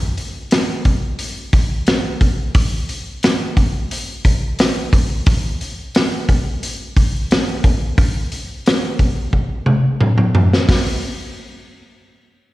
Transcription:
0, 0, Header, 1, 2, 480
1, 0, Start_track
1, 0, Tempo, 677966
1, 1812, Time_signature, 4, 2, 24, 8
1, 8876, End_track
2, 0, Start_track
2, 0, Title_t, "Drums"
2, 124, Note_on_c, 9, 46, 46
2, 195, Note_off_c, 9, 46, 0
2, 361, Note_on_c, 9, 46, 68
2, 371, Note_on_c, 9, 38, 111
2, 432, Note_off_c, 9, 46, 0
2, 441, Note_off_c, 9, 38, 0
2, 601, Note_on_c, 9, 46, 50
2, 603, Note_on_c, 9, 36, 76
2, 672, Note_off_c, 9, 46, 0
2, 674, Note_off_c, 9, 36, 0
2, 841, Note_on_c, 9, 46, 70
2, 912, Note_off_c, 9, 46, 0
2, 1083, Note_on_c, 9, 46, 55
2, 1084, Note_on_c, 9, 36, 87
2, 1154, Note_off_c, 9, 36, 0
2, 1154, Note_off_c, 9, 46, 0
2, 1321, Note_on_c, 9, 46, 62
2, 1330, Note_on_c, 9, 38, 101
2, 1392, Note_off_c, 9, 46, 0
2, 1401, Note_off_c, 9, 38, 0
2, 1563, Note_on_c, 9, 46, 57
2, 1564, Note_on_c, 9, 36, 86
2, 1634, Note_off_c, 9, 46, 0
2, 1635, Note_off_c, 9, 36, 0
2, 1803, Note_on_c, 9, 46, 75
2, 1804, Note_on_c, 9, 36, 110
2, 1874, Note_off_c, 9, 46, 0
2, 1875, Note_off_c, 9, 36, 0
2, 2046, Note_on_c, 9, 46, 52
2, 2117, Note_off_c, 9, 46, 0
2, 2286, Note_on_c, 9, 46, 77
2, 2295, Note_on_c, 9, 38, 99
2, 2357, Note_off_c, 9, 46, 0
2, 2366, Note_off_c, 9, 38, 0
2, 2526, Note_on_c, 9, 36, 74
2, 2527, Note_on_c, 9, 46, 48
2, 2597, Note_off_c, 9, 36, 0
2, 2598, Note_off_c, 9, 46, 0
2, 2770, Note_on_c, 9, 46, 77
2, 2841, Note_off_c, 9, 46, 0
2, 3008, Note_on_c, 9, 36, 78
2, 3011, Note_on_c, 9, 46, 59
2, 3078, Note_off_c, 9, 36, 0
2, 3082, Note_off_c, 9, 46, 0
2, 3248, Note_on_c, 9, 46, 78
2, 3257, Note_on_c, 9, 38, 98
2, 3319, Note_off_c, 9, 46, 0
2, 3328, Note_off_c, 9, 38, 0
2, 3489, Note_on_c, 9, 36, 92
2, 3492, Note_on_c, 9, 46, 60
2, 3560, Note_off_c, 9, 36, 0
2, 3562, Note_off_c, 9, 46, 0
2, 3726, Note_on_c, 9, 46, 72
2, 3729, Note_on_c, 9, 36, 109
2, 3797, Note_off_c, 9, 46, 0
2, 3800, Note_off_c, 9, 36, 0
2, 3972, Note_on_c, 9, 46, 50
2, 4042, Note_off_c, 9, 46, 0
2, 4211, Note_on_c, 9, 46, 72
2, 4220, Note_on_c, 9, 38, 108
2, 4282, Note_off_c, 9, 46, 0
2, 4291, Note_off_c, 9, 38, 0
2, 4451, Note_on_c, 9, 36, 74
2, 4455, Note_on_c, 9, 46, 47
2, 4522, Note_off_c, 9, 36, 0
2, 4525, Note_off_c, 9, 46, 0
2, 4694, Note_on_c, 9, 46, 70
2, 4765, Note_off_c, 9, 46, 0
2, 4931, Note_on_c, 9, 36, 84
2, 4934, Note_on_c, 9, 46, 53
2, 5002, Note_off_c, 9, 36, 0
2, 5005, Note_off_c, 9, 46, 0
2, 5175, Note_on_c, 9, 46, 66
2, 5184, Note_on_c, 9, 38, 106
2, 5246, Note_off_c, 9, 46, 0
2, 5255, Note_off_c, 9, 38, 0
2, 5409, Note_on_c, 9, 36, 91
2, 5410, Note_on_c, 9, 46, 54
2, 5480, Note_off_c, 9, 36, 0
2, 5480, Note_off_c, 9, 46, 0
2, 5649, Note_on_c, 9, 36, 104
2, 5652, Note_on_c, 9, 46, 67
2, 5720, Note_off_c, 9, 36, 0
2, 5722, Note_off_c, 9, 46, 0
2, 5889, Note_on_c, 9, 46, 48
2, 5960, Note_off_c, 9, 46, 0
2, 6133, Note_on_c, 9, 46, 72
2, 6142, Note_on_c, 9, 38, 106
2, 6204, Note_off_c, 9, 46, 0
2, 6213, Note_off_c, 9, 38, 0
2, 6366, Note_on_c, 9, 46, 50
2, 6367, Note_on_c, 9, 36, 71
2, 6437, Note_off_c, 9, 46, 0
2, 6438, Note_off_c, 9, 36, 0
2, 6605, Note_on_c, 9, 36, 62
2, 6676, Note_off_c, 9, 36, 0
2, 6840, Note_on_c, 9, 47, 67
2, 6911, Note_off_c, 9, 47, 0
2, 7084, Note_on_c, 9, 45, 82
2, 7155, Note_off_c, 9, 45, 0
2, 7205, Note_on_c, 9, 45, 73
2, 7276, Note_off_c, 9, 45, 0
2, 7326, Note_on_c, 9, 43, 110
2, 7396, Note_off_c, 9, 43, 0
2, 7458, Note_on_c, 9, 38, 87
2, 7529, Note_off_c, 9, 38, 0
2, 7566, Note_on_c, 9, 36, 92
2, 7568, Note_on_c, 9, 46, 83
2, 7577, Note_on_c, 9, 38, 96
2, 7637, Note_off_c, 9, 36, 0
2, 7639, Note_off_c, 9, 46, 0
2, 7648, Note_off_c, 9, 38, 0
2, 8876, End_track
0, 0, End_of_file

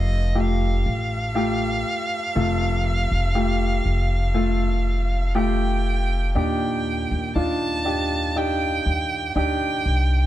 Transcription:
0, 0, Header, 1, 4, 480
1, 0, Start_track
1, 0, Tempo, 1000000
1, 1132, Time_signature, 4, 2, 24, 8
1, 4928, End_track
2, 0, Start_track
2, 0, Title_t, "Violin"
2, 0, Program_c, 0, 40
2, 0, Note_on_c, 0, 75, 83
2, 193, Note_on_c, 0, 77, 79
2, 201, Note_off_c, 0, 75, 0
2, 2572, Note_off_c, 0, 77, 0
2, 2575, Note_on_c, 0, 79, 74
2, 3034, Note_off_c, 0, 79, 0
2, 3058, Note_on_c, 0, 79, 65
2, 3516, Note_off_c, 0, 79, 0
2, 3535, Note_on_c, 0, 81, 82
2, 4017, Note_on_c, 0, 79, 84
2, 4025, Note_off_c, 0, 81, 0
2, 4493, Note_off_c, 0, 79, 0
2, 4495, Note_on_c, 0, 79, 90
2, 4928, Note_off_c, 0, 79, 0
2, 4928, End_track
3, 0, Start_track
3, 0, Title_t, "Grand piano"
3, 0, Program_c, 1, 0
3, 0, Control_c, 1, 64, 127
3, 0, Note_on_c, 1, 48, 49
3, 0, Note_on_c, 1, 57, 54
3, 0, Note_on_c, 1, 65, 53
3, 0, Note_on_c, 1, 67, 60
3, 0, Note_on_c, 1, 69, 65
3, 147, Note_off_c, 1, 57, 0
3, 147, Note_off_c, 1, 65, 0
3, 148, Note_off_c, 1, 69, 0
3, 169, Note_on_c, 1, 57, 56
3, 169, Note_on_c, 1, 65, 52
3, 170, Note_off_c, 1, 67, 0
3, 170, Note_on_c, 1, 67, 63
3, 627, Note_off_c, 1, 57, 0
3, 627, Note_off_c, 1, 65, 0
3, 627, Note_off_c, 1, 67, 0
3, 647, Note_on_c, 1, 57, 61
3, 649, Note_on_c, 1, 65, 59
3, 651, Note_on_c, 1, 67, 71
3, 1106, Note_off_c, 1, 57, 0
3, 1106, Note_off_c, 1, 65, 0
3, 1108, Note_off_c, 1, 67, 0
3, 1130, Note_on_c, 1, 57, 64
3, 1131, Note_on_c, 1, 65, 57
3, 1132, Note_off_c, 1, 48, 0
3, 1132, Note_on_c, 1, 48, 53
3, 1133, Note_on_c, 1, 69, 65
3, 1587, Note_off_c, 1, 57, 0
3, 1588, Note_off_c, 1, 65, 0
3, 1589, Note_off_c, 1, 69, 0
3, 1608, Note_on_c, 1, 57, 64
3, 1608, Note_on_c, 1, 67, 68
3, 1609, Note_on_c, 1, 65, 55
3, 1833, Note_off_c, 1, 48, 0
3, 2066, Note_off_c, 1, 57, 0
3, 2066, Note_off_c, 1, 67, 0
3, 2067, Note_off_c, 1, 65, 0
3, 2084, Note_on_c, 1, 57, 65
3, 2087, Note_on_c, 1, 65, 62
3, 2087, Note_on_c, 1, 69, 68
3, 2544, Note_off_c, 1, 57, 0
3, 2546, Note_off_c, 1, 65, 0
3, 2546, Note_off_c, 1, 69, 0
3, 2567, Note_on_c, 1, 57, 72
3, 2568, Note_on_c, 1, 65, 63
3, 2570, Note_on_c, 1, 67, 80
3, 3026, Note_off_c, 1, 57, 0
3, 3026, Note_off_c, 1, 65, 0
3, 3027, Note_off_c, 1, 67, 0
3, 3049, Note_on_c, 1, 62, 67
3, 3050, Note_on_c, 1, 63, 64
3, 3052, Note_on_c, 1, 46, 47
3, 3052, Note_on_c, 1, 67, 75
3, 3059, Control_c, 1, 64, 0
3, 3141, Control_c, 1, 64, 127
3, 3507, Note_off_c, 1, 62, 0
3, 3507, Note_off_c, 1, 63, 0
3, 3508, Note_off_c, 1, 67, 0
3, 3531, Note_on_c, 1, 62, 61
3, 3531, Note_on_c, 1, 63, 55
3, 3533, Note_on_c, 1, 65, 61
3, 3753, Note_off_c, 1, 46, 0
3, 3759, Note_off_c, 1, 62, 0
3, 3760, Note_off_c, 1, 63, 0
3, 3761, Note_off_c, 1, 65, 0
3, 3767, Note_on_c, 1, 62, 58
3, 3771, Note_on_c, 1, 63, 52
3, 3771, Note_on_c, 1, 67, 66
3, 3998, Note_off_c, 1, 62, 0
3, 4000, Note_off_c, 1, 63, 0
3, 4000, Note_off_c, 1, 67, 0
3, 4012, Note_on_c, 1, 62, 61
3, 4013, Note_on_c, 1, 63, 57
3, 4016, Note_on_c, 1, 67, 65
3, 4468, Note_off_c, 1, 62, 0
3, 4469, Note_off_c, 1, 63, 0
3, 4470, Note_off_c, 1, 67, 0
3, 4491, Note_on_c, 1, 62, 60
3, 4494, Note_on_c, 1, 63, 57
3, 4495, Note_on_c, 1, 67, 72
3, 4928, Note_off_c, 1, 62, 0
3, 4928, Note_off_c, 1, 63, 0
3, 4928, Note_off_c, 1, 67, 0
3, 4928, End_track
4, 0, Start_track
4, 0, Title_t, "Upright bass"
4, 0, Program_c, 2, 32
4, 0, Note_on_c, 2, 29, 90
4, 395, Note_off_c, 2, 29, 0
4, 413, Note_on_c, 2, 33, 81
4, 873, Note_off_c, 2, 33, 0
4, 1133, Note_on_c, 2, 29, 81
4, 1474, Note_off_c, 2, 29, 0
4, 1496, Note_on_c, 2, 29, 69
4, 1835, Note_off_c, 2, 29, 0
4, 1851, Note_on_c, 2, 29, 80
4, 3032, Note_off_c, 2, 29, 0
4, 3051, Note_on_c, 2, 39, 84
4, 3392, Note_off_c, 2, 39, 0
4, 3414, Note_on_c, 2, 39, 77
4, 3525, Note_off_c, 2, 39, 0
4, 3531, Note_on_c, 2, 39, 76
4, 4232, Note_off_c, 2, 39, 0
4, 4253, Note_on_c, 2, 39, 73
4, 4476, Note_off_c, 2, 39, 0
4, 4491, Note_on_c, 2, 38, 76
4, 4715, Note_off_c, 2, 38, 0
4, 4731, Note_on_c, 2, 36, 72
4, 4928, Note_off_c, 2, 36, 0
4, 4928, End_track
0, 0, End_of_file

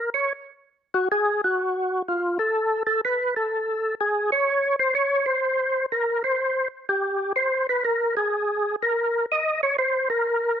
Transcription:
0, 0, Header, 1, 2, 480
1, 0, Start_track
1, 0, Tempo, 481928
1, 595, Time_signature, 4, 2, 24, 8
1, 10558, End_track
2, 0, Start_track
2, 0, Title_t, "Tonewheel organ"
2, 0, Program_c, 0, 16
2, 140, Note_on_c, 0, 73, 84
2, 327, Note_off_c, 0, 73, 0
2, 938, Note_on_c, 0, 66, 86
2, 1081, Note_off_c, 0, 66, 0
2, 1112, Note_on_c, 0, 68, 100
2, 1408, Note_off_c, 0, 68, 0
2, 1437, Note_on_c, 0, 66, 79
2, 2015, Note_off_c, 0, 66, 0
2, 2075, Note_on_c, 0, 65, 72
2, 2370, Note_off_c, 0, 65, 0
2, 2382, Note_on_c, 0, 69, 84
2, 2818, Note_off_c, 0, 69, 0
2, 2855, Note_on_c, 0, 69, 97
2, 2999, Note_off_c, 0, 69, 0
2, 3036, Note_on_c, 0, 71, 100
2, 3331, Note_off_c, 0, 71, 0
2, 3350, Note_on_c, 0, 69, 82
2, 3932, Note_off_c, 0, 69, 0
2, 3990, Note_on_c, 0, 68, 70
2, 4288, Note_off_c, 0, 68, 0
2, 4305, Note_on_c, 0, 73, 101
2, 4740, Note_off_c, 0, 73, 0
2, 4775, Note_on_c, 0, 72, 93
2, 4920, Note_off_c, 0, 72, 0
2, 4928, Note_on_c, 0, 73, 98
2, 5237, Note_off_c, 0, 73, 0
2, 5238, Note_on_c, 0, 72, 90
2, 5836, Note_off_c, 0, 72, 0
2, 5897, Note_on_c, 0, 70, 79
2, 6202, Note_off_c, 0, 70, 0
2, 6215, Note_on_c, 0, 72, 84
2, 6655, Note_off_c, 0, 72, 0
2, 6862, Note_on_c, 0, 67, 70
2, 7297, Note_off_c, 0, 67, 0
2, 7330, Note_on_c, 0, 72, 90
2, 7638, Note_off_c, 0, 72, 0
2, 7662, Note_on_c, 0, 71, 92
2, 7803, Note_off_c, 0, 71, 0
2, 7813, Note_on_c, 0, 70, 89
2, 8119, Note_off_c, 0, 70, 0
2, 8134, Note_on_c, 0, 68, 85
2, 8724, Note_off_c, 0, 68, 0
2, 8790, Note_on_c, 0, 70, 88
2, 9220, Note_off_c, 0, 70, 0
2, 9279, Note_on_c, 0, 75, 92
2, 9572, Note_off_c, 0, 75, 0
2, 9592, Note_on_c, 0, 73, 89
2, 9728, Note_off_c, 0, 73, 0
2, 9746, Note_on_c, 0, 72, 91
2, 10045, Note_off_c, 0, 72, 0
2, 10058, Note_on_c, 0, 70, 87
2, 10558, Note_off_c, 0, 70, 0
2, 10558, End_track
0, 0, End_of_file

